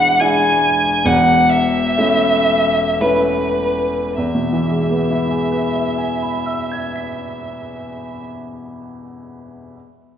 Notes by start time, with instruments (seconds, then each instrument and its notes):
Already playing: grand piano E1 E2 G#3 D4 E4, violin F#5
0.20 grand piano G#3 D4 E4, violin G#5
1.05 grand piano E1 E2, violin F#5
1.50 violin E5
1.98 grand piano A3 C#4 E4
3.00 grand piano A3 C#4 E4, violin B4
4.16 grand piano E2, violin E5
4.35 grand piano B2
4.53 grand piano E3
4.71 grand piano G#3
4.90 grand piano B3
5.11 grand piano E4
5.31 grand piano G#4
5.52 grand piano B4
5.75 grand piano E5
5.98 grand piano G#5
6.22 grand piano B5
6.46 grand piano E6
6.72 grand piano G#6
6.96 grand piano B6